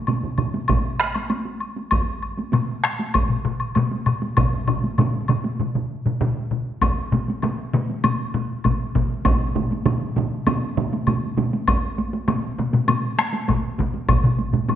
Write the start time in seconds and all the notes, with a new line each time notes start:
0.07 taiko mid, taiko high, high woodblock
0.23 taiko mid
0.38 taiko mid, high woodblock
0.54 taiko high
0.68 taiko, taiko mid, taiko high, high woodblock
1.00 taiko rim
1.14 taiko high, high woodblock
1.30 taiko high, high woodblock
1.45 taiko high
1.60 high woodblock
1.76 taiko high
1.91 taiko, taiko high, high woodblock
2.22 high woodblock
2.37 taiko high
2.53 taiko low-mid, taiko high, high woodblock
2.84 taiko rim, high woodblock
2.99 taiko high
3.14 taiko, taiko low-mid, taiko high, high woodblock
3.30 taiko low-mid
3.45 taiko low-mid
3.60 high woodblock
3.75 taiko low-mid, taiko high, high woodblock
3.92 taiko high
4.06 taiko low-mid, high woodblock
4.22 taiko high
4.37 taiko, taiko low-mid, taiko mid, taiko high, high woodblock
4.67 taiko low-mid, taiko mid, high woodblock
4.84 taiko high
4.98 taiko low-mid, taiko mid, taiko high, high woodblock
5.28 taiko low-mid, taiko mid, high woodblock
5.44 taiko high
5.59 taiko low-mid, taiko mid
5.75 taiko low-mid, taiko mid
6.06 taiko low-mid, taiko mid
6.21 taiko low-mid, taiko mid
6.51 taiko low-mid, taiko mid
6.81 taiko, taiko low-mid, taiko high, high woodblock
7.12 taiko low-mid, taiko high
7.28 taiko high
7.42 taiko low-mid, taiko high, high woodblock
7.73 taiko low-mid, taiko high
7.90 taiko high
8.04 taiko low-mid, taiko high, high woodblock
8.34 taiko low-mid, taiko high
8.64 taiko, taiko low-mid, taiko high, high woodblock
8.95 taiko, taiko low-mid, taiko high
9.25 taiko, taiko mid, taiko high, high woodblock
9.56 taiko mid, taiko high
9.71 taiko high
9.86 taiko mid, taiko high, high woodblock
10.16 taiko mid, taiko high
10.47 taiko mid, taiko high, high woodblock
10.77 taiko mid, taiko high
10.92 taiko high
11.07 taiko mid, taiko high, high woodblock
11.37 taiko mid, taiko high
11.53 taiko high
11.68 taiko, taiko high, high woodblock
11.98 taiko high
12.13 taiko high
12.28 taiko low-mid, taiko high, high woodblock
12.58 taiko low-mid, taiko high
12.73 taiko low-mid, taiko high
12.88 taiko low-mid, taiko high, high woodblock
13.18 taiko rim, taiko high
13.33 taiko high
13.48 taiko, taiko low-mid, taiko high, high woodblock
13.78 taiko, taiko low-mid, taiko high
13.94 taiko high
14.09 taiko, taiko low-mid, taiko mid, taiko high, high woodblock
14.24 taiko low-mid, taiko mid
14.38 taiko high
14.53 taiko low-mid, taiko mid, taiko high
14.69 taiko low-mid, taiko mid, taiko high, high woodblock